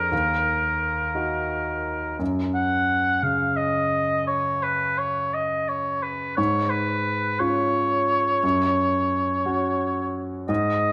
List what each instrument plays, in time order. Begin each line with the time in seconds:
Already playing: grand piano F2 D4 G#4, oboe A#4
0.12 grand piano D#2
1.15 grand piano D#4 F#4
2.19 grand piano F#2
2.55 oboe F#5
3.23 grand piano C#3, oboe F5
3.56 oboe D#5
4.27 oboe C#5
4.63 oboe B4
4.98 oboe C#5
5.34 oboe D#5
5.69 oboe C#5
6.03 oboe B4
6.37 grand piano G#2, oboe C#5
6.70 oboe B4
7.40 grand piano C#4 F4, oboe C#5
8.43 grand piano F#2
9.46 grand piano C#4 F#4
10.49 grand piano G#2, oboe D#5